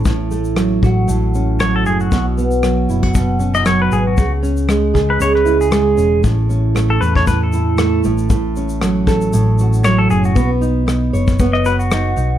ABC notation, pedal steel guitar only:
X:1
M:4/4
L:1/16
Q:"Swing 16ths" 1/4=116
K:F#dor
V:1 name="Pedal steel guitar"
z12 c A G F- | F z8 z2 d c B G F- | F z6 B c B2 G4- G | z4 z A B c B A4- A z2 |
z12 c A G F- | F z8 d B F4- F |]